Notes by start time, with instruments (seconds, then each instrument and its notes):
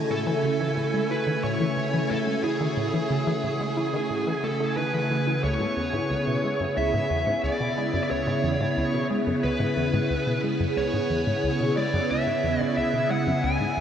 Already playing: string machine C#3 A3 E4 G#5, synth texture F#4 G#5
0.10 synth arpeggio sound A2, lead electric guitar A4
0.27 synth arpeggio sound E3
0.44 synth arpeggio sound C#3
0.60 synth arpeggio sound E3
0.77 synth arpeggio sound A2
0.94 synth arpeggio sound G#3
1.11 synth arpeggio sound E4, lead electric guitar B4
1.27 synth arpeggio sound D#3
1.44 synth arpeggio sound A2, lead electric guitar C#5
1.61 synth arpeggio sound E3
1.77 synth arpeggio sound C#3
1.94 synth arpeggio sound E3
2.11 synth arpeggio sound A2, lead electric guitar A4
2.27 synth arpeggio sound G#3
2.44 synth arpeggio sound E4, lead electric guitar G#4
2.61 synth arpeggio sound D#3
2.77 synth arpeggio sound A2
2.94 synth arpeggio sound E3
3.11 synth arpeggio sound C#3
3.27 synth arpeggio sound E3
3.44 synth arpeggio sound A2
3.60 synth arpeggio sound G#3
3.77 synth arpeggio sound E4
3.94 synth arpeggio sound D#3
4.10 synth arpeggio sound A2
4.27 synth arpeggio sound E3
4.44 synth arpeggio sound A3, lead electric guitar A4
4.60 synth arpeggio sound A3
4.77 synth arpeggio sound D#3, lead electric guitar B4
4.94 synth arpeggio sound E3
5.10 synth arpeggio sound E3
5.27 synth arpeggio sound E3
5.43 synth arpeggio sound C#2, string machine C#3 B3 E4 G#4, lead electric guitar C#5
5.60 synth arpeggio sound G#2
5.77 synth arpeggio sound E2
5.94 synth arpeggio sound G#2
6.11 synth arpeggio sound C#2
6.27 synth arpeggio sound B2
6.44 synth arpeggio sound G#3
6.61 synth arpeggio sound F#2
6.77 synth arpeggio sound C#2, lead electric guitar E5
6.94 synth arpeggio sound G#2
7.10 synth arpeggio sound E2
7.27 synth arpeggio sound G#2
7.44 synth arpeggio sound C#2, lead electric guitar D5
7.61 synth arpeggio sound B2
7.77 synth arpeggio sound G#3
7.94 synth arpeggio sound F#2
8.03 lead electric guitar D5
8.11 synth arpeggio sound C#2, lead electric guitar C#5
8.27 synth arpeggio sound G#2
8.44 synth arpeggio sound E2
8.61 synth arpeggio sound G#2
8.77 synth arpeggio sound C#2
8.94 synth arpeggio sound B2
9.10 synth arpeggio sound G#3
9.27 synth arpeggio sound F#2
9.43 synth arpeggio sound C#2, lead electric guitar B4
9.60 synth arpeggio sound G#2
9.77 synth arpeggio sound E2
9.94 synth arpeggio sound G#2
10.10 synth arpeggio sound C#2
10.27 synth arpeggio sound B2
10.44 synth arpeggio sound G#3
10.60 synth arpeggio sound F#2
10.77 synth arpeggio sound C#2, lead electric guitar C#5
10.94 synth arpeggio sound G#2
11.10 synth arpeggio sound E2
11.27 synth arpeggio sound G#2
11.44 synth arpeggio sound C#2
11.61 synth arpeggio sound B2
11.77 synth arpeggio sound G#3, lead electric guitar D5
11.94 synth arpeggio sound F#2
12.11 synth arpeggio sound C#2, lead electric guitar E5
12.27 synth arpeggio sound G#2
12.44 synth arpeggio sound E2
12.61 synth arpeggio sound G#2, lead electric guitar D5
12.77 synth arpeggio sound C#2, lead electric guitar E5
12.94 synth arpeggio sound B2
13.10 synth arpeggio sound G#3, lead electric guitar F#5
13.27 synth arpeggio sound F#2
13.44 synth arpeggio sound C#2, lead electric guitar G#5
13.61 synth arpeggio sound G#2
13.77 synth arpeggio sound E2